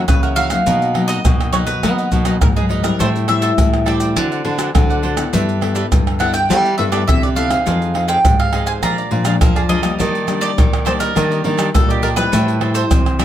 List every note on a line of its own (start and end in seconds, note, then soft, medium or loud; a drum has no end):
0.08 0.58 C#3 medium
0.08 0.64 C#3 medium
0.08 0.33 E3 medium
0.08 0.33 A#3 medium
0.08 0.33 C#4 medium
0.08 0.22 B4 medium
0.08 pandeiro medium
0.08 tamborim medium
0.08 maracas medium
0.08 surdo loud
0.23 0.28 A#4 medium
0.23 0.35 A#4 soft
0.23 0.36 E5 soft
0.23 0.36 F#5 soft
0.23 pandeiro soft
0.23 maracas soft
0.36 0.47 E3 medium
0.36 0.47 A#3 medium
0.36 0.48 C#4 medium
0.36 0.50 F#4 medium
0.36 0.50 A#4 medium
0.36 0.50 E5 medium
0.36 1.06 F5 loud
0.36 0.49 F#5 medium
0.36 pandeiro medium
0.36 maracas medium
0.50 0.91 F#3 medium
0.50 0.91 A#3 medium
0.50 0.91 D#4 medium
0.50 0.65 A#4 soft
0.50 0.65 E5 medium
0.50 0.64 F#5 medium
0.50 pandeiro medium
0.50 tamborim medium
0.50 maracas medium
0.66 1.16 B2 loud
0.66 1.22 B2 medium
0.66 0.93 D#4 medium
0.66 0.94 A#4 medium
0.66 0.95 B4 medium
0.66 0.95 D#5 medium
0.66 pandeiro medium
0.66 maracas medium
0.66 surdo medium
0.82 pandeiro soft
0.82 maracas soft
0.94 1.49 F#3 medium
0.94 1.49 A#3 medium
0.94 1.07 D#4 medium
0.94 1.50 D#4 medium
0.94 1.08 A#4 soft
0.94 1.08 B4 medium
0.94 1.08 D#5 medium
0.94 pandeiro medium
0.94 tamborim medium
1.08 1.18 D#4 medium
1.08 1.19 A#4 medium
1.08 1.19 B4 medium
1.08 1.52 D#5 loud
1.08 1.19 D#5 medium
1.08 pandeiro medium
1.08 maracas medium
1.25 1.81 F#2 medium
1.25 1.83 B2 medium
1.25 pandeiro medium
1.25 tamborim medium
1.25 maracas medium
1.25 surdo medium
1.41 pandeiro soft
1.41 tamborim medium
1.41 maracas soft
1.52 1.71 F#3 medium
1.52 1.71 A#3 medium
1.52 1.67 D#4 medium
1.52 1.71 D#4 medium
1.52 1.67 A#4 medium
1.52 1.67 B4 medium
1.52 1.58 C#5 medium
1.52 1.65 D#5 medium
1.52 pandeiro medium
1.52 tamborim medium
1.52 maracas medium
1.67 1.82 A#4 soft
1.67 2.41 B4 medium
1.67 1.82 B4 soft
1.67 1.81 D#5 soft
1.67 pandeiro medium
1.67 maracas medium
1.83 2.39 B2 medium
1.83 2.08 F#3 medium
1.83 2.08 A#3 medium
1.83 2.08 B3 loud
1.83 1.97 D#4 medium
1.83 2.08 D#4 medium
1.83 1.97 A#4 medium
1.83 1.97 B4 medium
1.83 1.97 D#5 medium
1.83 pandeiro medium
1.83 tamborim medium
1.83 maracas medium
1.83 surdo medium
1.98 2.11 A#4 soft
1.98 2.12 B4 soft
1.98 2.11 D#5 medium
1.98 pandeiro soft
1.98 maracas soft
2.11 2.37 B2 medium
2.11 2.22 F#3 medium
2.11 2.22 A#3 medium
2.11 2.24 D#4 soft
2.11 2.22 D#4 medium
2.11 2.25 A#4 medium
2.11 2.25 B4 medium
2.11 2.25 D#5 medium
2.11 pandeiro medium
2.11 maracas medium
2.11 surdo medium
2.25 2.36 F#3 medium
2.25 2.36 A#3 medium
2.25 2.35 D#4 medium
2.25 2.37 D#4 medium
2.25 2.35 A#4 medium
2.25 2.36 B4 medium
2.25 2.36 D#5 medium
2.25 pandeiro medium
2.25 tamborim medium
2.25 maracas medium
2.41 2.97 F#2 medium
2.41 2.91 G#2 medium
2.41 2.59 F#3 medium
2.41 2.59 A#3 medium
2.41 2.59 D#4 medium
2.41 2.47 A#4 medium
2.41 pandeiro medium
2.41 tamborim medium
2.41 maracas medium
2.41 surdo loud
2.56 2.64 G#4 medium
2.56 2.69 A#4 soft
2.56 2.69 B4 soft
2.56 2.70 D#5 soft
2.56 pandeiro soft
2.56 maracas soft
2.69 2.80 F#3 medium
2.69 2.80 A#3 medium
2.69 2.83 D#4 medium
2.69 2.81 D#4 medium
2.69 2.84 A#4 medium
2.69 2.83 B4 medium
2.69 2.82 D#5 medium
2.69 pandeiro medium
2.83 3.23 G3 medium
2.83 3.24 C4 medium
2.83 3.24 E4 medium
2.83 2.98 A#4 medium
2.83 2.99 A#4 soft
2.83 2.98 B4 soft
2.83 2.98 D#5 medium
2.83 pandeiro medium
2.83 tamborim medium
2.83 maracas medium
2.99 3.55 A2 medium
2.99 3.50 A2 medium
2.99 3.26 A4 medium
2.99 3.27 C5 medium
2.99 3.08 C5 loud
2.99 3.28 E5 medium
2.99 3.29 G5 medium
2.99 pandeiro medium
2.99 maracas medium
2.99 surdo medium
3.16 pandeiro soft
3.16 maracas soft
3.28 3.82 G3 medium
3.28 3.83 C4 medium
3.28 3.83 E4 medium
3.28 3.41 A4 soft
3.28 3.41 C5 medium
3.28 3.87 E5 loud
3.28 3.41 E5 medium
3.28 3.42 G5 medium
3.28 pandeiro medium
3.28 tamborim medium
3.42 3.52 A4 medium
3.42 3.52 C5 medium
3.42 3.52 E5 medium
3.42 3.52 G5 medium
3.42 pandeiro medium
3.42 maracas medium
3.58 4.16 A2 medium
3.58 4.14 E3 soft
3.58 pandeiro medium
3.58 tamborim medium
3.58 maracas medium
3.58 surdo loud
3.73 pandeiro soft
3.73 tamborim medium
3.73 maracas soft
3.86 4.12 G3 medium
3.86 4.12 C4 medium
3.86 4.12 E4 medium
3.86 4.00 A4 medium
3.86 4.01 C5 medium
3.86 4.71 D5 medium
3.86 4.00 E5 medium
3.86 3.99 G5 medium
3.86 pandeiro medium
3.86 tamborim medium
4.00 4.15 C5 soft
4.00 4.15 E5 soft
4.00 4.14 G5 medium
4.00 pandeiro medium
4.00 maracas medium
4.16 4.41 D3 loud
4.16 4.72 D3 medium
4.16 4.41 C4 medium
4.16 4.30 D4 medium
4.16 4.41 F#4 medium
4.16 4.42 A4 medium
4.16 4.30 C5 medium
4.16 4.31 D5 medium
4.16 4.30 F#5 medium
4.16 pandeiro medium
4.16 tamborim medium
4.16 maracas medium
4.16 surdo medium
4.32 4.44 C5 soft
4.32 4.45 D5 soft
4.32 4.45 F#5 soft
4.32 pandeiro soft
4.32 maracas soft
4.45 4.70 D3 loud
4.45 4.55 C4 medium
4.45 4.57 D4 medium
4.45 4.55 F#4 medium
4.45 4.56 A4 medium
4.45 4.58 C5 medium
4.45 4.58 D5 soft
4.45 4.59 F#5 medium
4.45 pandeiro medium
4.58 4.69 C4 medium
4.58 4.68 D4 medium
4.58 4.70 F#4 medium
4.58 4.70 A4 medium
4.58 4.69 C5 medium
4.58 4.69 D5 medium
4.58 4.69 F#5 medium
4.58 pandeiro medium
4.58 tamborim medium
4.58 maracas medium
4.75 5.30 A2 medium
4.75 5.24 D3 medium
4.75 5.00 C4 medium
4.75 5.00 F#4 medium
4.75 5.00 A4 medium
4.75 pandeiro medium
4.75 tamborim medium
4.75 maracas medium
4.75 surdo loud
4.90 5.02 C5 soft
4.90 5.03 D5 soft
4.90 5.03 F#5 soft
4.90 pandeiro soft
4.90 maracas soft
5.03 5.13 C4 medium
5.03 5.17 D4 medium
5.03 5.13 F#4 medium
5.03 5.13 A4 medium
5.03 5.17 C5 medium
5.03 5.16 D5 medium
5.03 5.15 F#5 medium
5.03 pandeiro medium
5.17 5.57 B3 medium
5.17 5.57 E4 medium
5.17 5.57 A4 medium
5.17 5.32 C5 soft
5.17 5.32 D5 medium
5.17 5.31 F#5 soft
5.17 pandeiro medium
5.17 tamborim medium
5.17 maracas medium
5.33 5.83 G2 loud
5.33 5.89 G3 medium
5.33 5.60 D4 medium
5.33 5.61 G4 medium
5.33 5.62 B4 medium
5.33 5.62 E5 medium
5.33 pandeiro medium
5.33 maracas medium
5.33 surdo medium
5.49 pandeiro soft
5.49 maracas soft
5.61 6.00 B3 medium
5.61 5.73 D4 medium
5.61 6.00 E4 medium
5.61 5.74 G4 soft
5.61 6.00 A4 medium
5.61 5.75 B4 medium
5.61 5.75 E5 medium
5.61 pandeiro medium
5.61 tamborim medium
5.75 5.85 D4 medium
5.75 5.85 G4 medium
5.75 5.85 B4 medium
5.75 5.85 E5 medium
5.75 pandeiro medium
5.75 maracas medium
5.92 6.50 G2 medium
5.92 6.47 D3 medium
5.92 pandeiro medium
5.92 tamborim medium
5.92 maracas medium
5.92 surdo loud
6.07 pandeiro soft
6.07 tamborim medium
6.07 maracas soft
6.19 6.38 B3 medium
6.19 6.33 D4 medium
6.19 6.38 E4 medium
6.19 6.34 G4 medium
6.19 6.38 A4 medium
6.19 6.33 B4 medium
6.19 6.31 E5 medium
6.19 6.33 F#5 medium
6.19 pandeiro medium
6.19 tamborim medium
6.33 6.49 G4 soft
6.33 6.48 B4 soft
6.33 6.47 E5 soft
6.33 6.75 G5 medium
6.33 pandeiro medium
6.33 maracas medium
6.49 6.75 G3 loud
6.49 7.06 G3 medium
6.49 6.67 B3 medium
6.49 6.63 D4 medium
6.49 6.68 E4 medium
6.49 6.63 G4 medium
6.49 6.68 A4 medium
6.49 6.64 B4 medium
6.49 6.63 E5 medium
6.49 pandeiro medium
6.49 tamborim medium
6.49 maracas medium
6.49 surdo medium
6.64 6.77 G4 soft
6.64 6.78 B4 soft
6.64 6.78 E5 soft
6.64 pandeiro soft
6.64 maracas soft
6.78 7.04 G2 loud
6.78 6.88 B3 medium
6.78 6.91 D4 medium
6.78 6.88 E4 medium
6.78 6.91 G4 medium
6.78 6.88 A4 medium
6.78 6.92 B4 medium
6.78 6.83 E5 medium
6.78 6.92 E5 medium
6.78 pandeiro medium
6.92 7.03 B3 medium
6.92 7.02 D4 medium
6.92 7.03 E4 medium
6.92 7.02 G4 medium
6.92 7.03 A4 medium
6.92 7.02 B4 medium
6.92 7.06 D5 medium
6.92 7.02 E5 medium
6.92 pandeiro medium
6.92 tamborim medium
6.92 maracas medium
7.08 7.58 C3 medium
7.08 7.64 D3 medium
7.08 7.25 B3 medium
7.08 7.25 E4 medium
7.08 7.26 A4 medium
7.08 7.21 E5 medium
7.08 pandeiro medium
7.08 tamborim medium
7.08 maracas medium
7.08 surdo loud
7.23 7.35 G4 soft
7.23 7.36 B4 soft
7.23 7.28 D5 medium
7.23 7.37 E5 soft
7.23 pandeiro soft
7.23 maracas soft
7.35 7.47 B3 medium
7.35 7.50 D4 medium
7.35 7.47 E4 medium
7.35 7.50 G4 medium
7.35 7.47 A4 medium
7.35 7.49 B4 medium
7.35 7.48 E5 medium
7.35 8.08 F5 loud
7.35 pandeiro medium
7.35 maracas medium
7.49 7.90 C4 medium
7.49 7.90 D#4 medium
7.49 7.65 G4 soft
7.49 7.91 G#4 medium
7.49 7.65 B4 soft
7.49 7.64 E5 medium
7.49 pandeiro medium
7.49 tamborim medium
7.49 maracas medium
7.66 8.16 F2 loud
7.66 8.22 F3 medium
7.66 7.93 D#4 medium
7.66 7.94 G#4 medium
7.66 7.94 C5 medium
7.66 7.95 F5 medium
7.66 pandeiro medium
7.66 maracas medium
7.66 surdo medium
7.82 pandeiro soft
7.82 maracas soft
7.94 8.33 C4 medium
7.94 8.06 D#4 soft
7.94 8.33 D#4 medium
7.94 8.07 G#4 medium
7.94 8.33 G#4 medium
7.94 8.07 C5 medium
7.94 8.08 F5 medium
7.94 pandeiro medium
7.94 tamborim medium
8.08 8.18 D#4 medium
8.08 8.18 G#4 medium
8.08 8.18 C5 medium
8.08 8.19 F5 medium
8.08 8.39 G5 loud
8.08 pandeiro medium
8.08 maracas medium
8.25 8.83 G#2 medium
8.25 8.80 C3 medium
8.25 pandeiro medium
8.25 tamborim medium
8.25 maracas medium
8.25 surdo loud
8.39 8.67 F5 loud
8.39 pandeiro soft
8.39 tamborim medium
8.39 maracas soft
8.52 8.78 C4 medium
8.52 8.67 D#4 medium
8.52 8.78 D#4 medium
8.52 8.67 G#4 medium
8.52 8.79 G#4 medium
8.52 8.66 C5 medium
8.52 8.65 F5 medium
8.52 pandeiro medium
8.52 tamborim medium
8.66 8.82 G#4 soft
8.66 8.81 C5 soft
8.66 8.81 F5 medium
8.66 8.72 G#5 medium
8.66 pandeiro medium
8.66 maracas medium
8.83 9.38 A#2 medium
8.83 9.08 A#2 loud
8.83 9.00 F3 medium
8.83 9.00 G#3 medium
8.83 9.01 D4 medium
8.83 8.96 G#4 medium
8.83 8.97 A#4 medium
8.83 8.97 D5 medium
8.83 8.97 F5 medium
8.83 9.37 A#5 loud
8.83 pandeiro medium
8.83 tamborim medium
8.83 maracas medium
8.83 surdo medium
8.98 9.10 A#4 soft
8.98 9.11 D5 soft
8.98 9.11 F5 soft
8.98 pandeiro soft
8.98 maracas soft
9.11 9.37 A#2 loud
9.11 9.22 F3 medium
9.11 9.22 G#3 medium
9.11 9.22 D4 medium
9.11 9.24 G#4 soft
9.11 9.24 A#4 soft
9.11 9.25 D5 medium
9.11 9.24 F5 medium
9.11 pandeiro medium
9.25 9.65 F3 medium
9.25 9.65 G#3 medium
9.25 9.66 D4 medium
9.25 9.35 G#4 medium
9.25 9.35 A#4 medium
9.25 9.35 D5 medium
9.25 9.35 F5 medium
9.25 pandeiro medium
9.25 tamborim medium
9.25 maracas medium
9.41 9.97 F2 medium
9.41 9.91 F3 medium
9.41 9.57 A#4 medium
9.41 pandeiro medium
9.41 tamborim medium
9.41 maracas medium
9.41 surdo loud
9.56 9.61 G#4 medium
9.56 9.68 A#4 soft
9.56 9.69 D5 medium
9.56 9.69 F5 soft
9.56 pandeiro soft
9.56 maracas soft
9.69 9.79 F3 medium
9.69 9.79 G#3 medium
9.69 9.79 D4 medium
9.69 9.83 G#4 medium
9.69 9.83 A#4 medium
9.69 9.81 D5 medium
9.69 10.41 D#5 loud
9.69 9.82 F5 medium
9.69 pandeiro medium
9.82 10.23 G3 medium
9.82 10.24 A#3 medium
9.82 9.98 A#4 soft
9.82 9.97 D5 medium
9.82 9.98 F5 soft
9.82 pandeiro medium
9.82 tamborim medium
9.82 maracas medium
9.99 10.55 D#3 medium
9.99 10.49 D#3 loud
9.99 10.26 D4 medium
9.99 10.26 G4 medium
9.99 10.27 D5 medium
9.99 10.27 D#5 medium
9.99 pandeiro medium
9.99 maracas medium
9.99 surdo medium
10.15 pandeiro soft
10.15 maracas soft
10.27 10.66 G3 medium
10.27 10.66 A#3 medium
10.27 10.40 D4 soft
10.27 10.66 D4 medium
10.27 10.40 G4 medium
10.27 10.41 D5 medium
10.27 10.40 D#5 medium
10.27 pandeiro medium
10.27 tamborim medium
10.27 maracas medium
10.41 10.51 D4 medium
10.41 10.51 G4 medium
10.41 10.85 D5 loud
10.41 10.52 D5 medium
10.41 10.52 D#5 medium
10.41 pandeiro medium
10.41 maracas medium
10.58 11.13 A#2 medium
10.58 11.08 D#3 medium
10.58 pandeiro medium
10.58 tamborim medium
10.58 maracas medium
10.58 surdo loud
10.73 pandeiro soft
10.73 tamborim medium
10.73 maracas soft
10.85 11.11 G3 medium
10.85 11.11 A#3 medium
10.85 10.99 D4 medium
10.85 11.11 D4 medium
10.85 11.00 G4 medium
10.85 10.91 C5 medium
10.85 10.98 D5 medium
10.85 10.99 D#5 medium
10.85 pandeiro medium
10.85 tamborim loud
10.85 maracas medium
10.99 11.15 G4 soft
10.99 11.74 A#4 medium
10.99 11.14 D5 medium
10.99 11.14 D#5 medium
10.99 pandeiro medium
10.99 maracas medium
11.15 11.72 D#3 medium
11.15 11.41 D#3 loud
11.15 11.41 G3 medium
11.15 11.41 A#3 medium
11.15 11.29 D4 medium
11.15 11.41 D4 medium
11.15 11.30 G4 medium
11.15 11.29 D5 medium
11.15 11.30 D#5 medium
11.15 pandeiro medium
11.15 tamborim medium
11.15 maracas medium
11.15 surdo medium
11.31 11.43 G4 soft
11.31 11.44 D5 medium
11.31 11.44 D#5 soft
11.31 pandeiro soft
11.31 maracas soft
11.44 11.70 D#3 loud
11.44 11.55 G3 medium
11.44 11.55 A#3 medium
11.44 11.56 D4 soft
11.44 11.55 D4 medium
11.44 11.57 G4 medium
11.44 11.58 D5 medium
11.44 11.57 D#5 medium
11.44 pandeiro medium
11.57 11.69 G3 medium
11.57 11.69 A#3 medium
11.57 11.68 D4 medium
11.57 11.69 D4 medium
11.57 11.68 G4 medium
11.57 11.68 D5 medium
11.57 11.68 D#5 medium
11.57 pandeiro medium
11.57 tamborim medium
11.57 maracas medium
11.74 12.30 A#2 medium
11.74 12.24 A#2 medium
11.74 12.02 G3 medium
11.74 12.02 A#3 medium
11.74 12.02 D4 medium
11.74 11.90 A4 medium
11.74 pandeiro medium
11.74 tamborim medium
11.74 maracas medium
11.74 surdo loud
11.89 12.05 G4 medium
11.89 12.01 G4 soft
11.89 12.02 D5 soft
11.89 12.02 D#5 soft
11.89 pandeiro soft
11.89 maracas soft
12.02 12.16 D4 medium
12.02 12.17 G4 medium
12.02 12.08 A#4 medium
12.02 12.15 D5 medium
12.02 12.16 D#5 medium
12.02 pandeiro medium
12.16 12.56 G3 medium
12.16 12.57 C4 medium
12.16 12.57 E4 medium
12.16 12.32 G4 soft
12.16 12.74 B4 medium
12.16 12.31 D5 medium
12.16 12.31 D#5 soft
12.16 pandeiro medium
12.16 tamborim medium
12.16 maracas medium
12.32 12.82 A2 loud
12.32 12.89 A2 medium
12.32 12.59 A4 medium
12.32 12.60 C5 medium
12.32 12.61 E5 medium
12.32 12.62 G5 medium
12.32 pandeiro medium
12.32 maracas medium
12.32 surdo medium
12.48 pandeiro soft
12.48 maracas soft
12.61 12.99 G3 medium
12.61 13.00 C4 medium
12.61 13.00 E4 medium
12.61 12.73 A4 soft
12.61 12.73 C5 soft
12.61 12.74 E5 medium
12.61 12.74 G5 medium
12.61 pandeiro medium
12.61 tamborim medium
12.74 12.84 A4 medium
12.74 12.85 C5 medium
12.74 13.19 C5 medium
12.74 12.85 E5 medium
12.74 12.85 G5 medium
12.74 pandeiro medium
12.74 maracas medium
12.91 13.25 C3 medium
12.91 13.25 E3 medium
12.91 pandeiro medium
12.91 tamborim medium
12.91 maracas medium
12.91 surdo loud
13.06 pandeiro soft
13.06 tamborim medium
13.06 maracas soft
13.19 13.25 G3 medium
13.19 13.25 C4 medium
13.19 13.25 E4 medium
13.19 13.25 A4 medium
13.19 13.25 C5 medium
13.19 13.25 D5 medium
13.19 13.25 E5 medium
13.19 13.25 G5 medium
13.19 pandeiro medium
13.19 tamborim medium
13.19 maracas medium